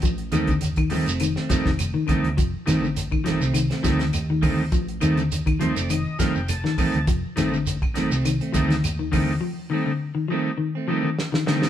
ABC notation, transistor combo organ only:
X:1
M:4/4
L:1/16
Q:"Swing 16ths" 1/4=102
K:Fmix
V:1 name="Transistor combo organ"
z16 | z16 | z6 c d e2 f g a2 a2 | z16 |
z16 |]
V:2 name="Transistor combo organ"
z2 [G,A,E]2 z2 [G,A,E]2 z2 [G,A,E]2 z2 [G,A,E]2 | z2 [G,A,E]2 z2 [G,A,E]2 z2 [G,A,E]2 z2 [G,A,E]2 | z2 [G,A,E]2 z2 [G,A,E]2 z2 [G,A,E]2 z2 [G,A,E]2 | z2 [G,A,E]2 z2 [G,A,E]2 z2 [G,A,E]2 z2 [G,A,E]2 |
z2 [G,A,E]2 z2 [G,A,E]2 z2 [G,A,E]2 z2 [G,A,E]2 |]